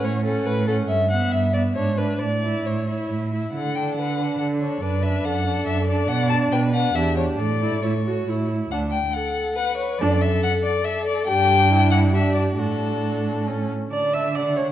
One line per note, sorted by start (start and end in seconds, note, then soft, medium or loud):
0.00 0.41 A2 medium
0.00 0.24 C#4 soft
0.00 0.25 F#5 soft
0.04 0.24 C#5 medium
0.24 0.67 C#4 soft
0.24 0.47 A4 medium
0.24 0.67 F#5 medium
0.46 0.84 A2 medium
0.46 0.67 B4 medium
0.67 0.89 C#4 soft
0.67 0.75 A4 medium
0.67 0.89 F#5 soft
0.88 1.28 G2 medium
0.88 1.10 E5 medium
1.10 1.53 B3 soft
1.10 1.53 E5 soft
1.10 1.33 F#5 medium
1.31 1.71 G2 medium
1.31 1.53 E5 medium
1.54 1.76 B3 soft
1.54 1.62 D5 medium
1.54 1.75 E5 soft
1.75 2.15 G#2 medium
1.75 1.97 D4 soft
1.75 1.99 C#5 medium
1.75 1.98 E5 soft
1.97 2.20 D4 soft
1.97 2.20 B4 medium
1.97 2.21 E5 soft
2.19 2.60 A2 medium
2.19 2.67 D5 medium
2.43 2.87 E4 soft
2.43 2.86 E5 soft
2.66 3.05 A2 soft
2.66 3.10 C#5 medium
2.86 3.32 E4 soft
2.86 3.31 E5 soft
3.10 3.50 A2 soft
3.32 3.54 E4 soft
3.32 3.52 E5 soft
3.53 3.92 D3 soft
3.53 4.00 A4 soft
3.53 3.77 F#5 medium
3.75 4.18 D4 soft
3.75 3.95 G5 medium
3.96 4.35 D3 medium
3.96 4.40 B4 soft
3.96 4.38 F#5 medium
4.20 4.61 D4 soft
4.38 4.77 D3 medium
4.38 4.84 A4 medium
4.38 4.46 F#5 medium
4.60 4.82 D4 soft
4.60 4.83 C#5 medium
4.82 5.20 F#2 medium
4.82 5.03 D4 soft
4.82 5.26 B4 medium
4.82 5.05 D5 medium
5.03 5.45 D4 soft
5.03 5.27 E5 medium
5.25 5.62 F#2 medium
5.25 6.09 A4 medium
5.25 5.67 F#5 medium
5.46 5.87 D4 soft
5.67 6.05 F#2 medium
5.67 5.87 E5 medium
5.88 6.10 D4 medium
5.88 6.10 D5 medium
6.08 6.48 B2 medium
6.08 6.54 D5 medium
6.08 6.29 F#5 loud
6.30 6.73 D4 medium
6.30 6.38 A5 medium
6.52 6.90 B2 medium
6.52 6.96 B4 medium
6.52 6.60 G5 medium
6.73 6.96 D4 medium
6.73 6.97 F#5 medium
6.95 7.34 E2 medium
6.95 7.17 D4 medium
6.95 7.41 G4 medium
6.95 7.16 E5 medium
7.17 7.39 D4 soft
7.17 7.25 C#5 medium
7.39 7.78 A2 medium
7.39 8.49 A4 medium
7.39 7.84 D5 medium
7.62 7.79 E4 soft
7.83 8.22 A2 medium
7.83 7.91 E4 medium
7.83 8.49 C#5 medium
8.06 8.30 F#4 soft
8.28 8.66 A2 soft
8.28 8.72 E4 soft
8.71 9.08 D2 medium
8.71 8.92 D4 soft
8.71 8.79 F#5 medium
8.91 9.15 G5 medium
9.13 9.57 A4 medium
9.13 9.55 F#5 medium
9.56 10.01 B4 medium
9.56 9.77 F#5 medium
9.78 10.00 C#5 medium
9.99 10.36 F#2 medium
9.99 10.20 D4 medium
9.99 10.84 A4 medium
9.99 10.23 D5 medium
10.21 10.43 E5 medium
10.43 10.51 F#5 loud
10.63 10.86 D5 medium
10.85 11.29 A4 medium
10.85 11.07 E5 loud
11.07 11.27 D5 medium
11.28 12.55 G2 medium
11.28 12.11 D4 medium
11.28 11.71 G4 medium
11.28 11.91 G5 loud
11.71 12.15 E4 medium
11.91 11.99 F#5 medium
12.13 12.58 D4 medium
12.13 12.60 G4 medium
12.13 12.34 E5 medium
12.34 12.42 D5 medium
12.57 13.69 A2 medium
12.57 13.48 D4 soft
12.57 13.70 F#4 medium
12.57 13.67 A4 medium
13.47 13.71 C#4 soft
13.91 14.72 D3 soft
13.91 14.72 D4 soft
13.91 14.15 D5 medium
13.91 14.36 A5 soft
14.13 14.36 E5 medium
14.34 14.56 D5 medium
14.34 14.72 F#5 soft
14.56 14.64 C#5 medium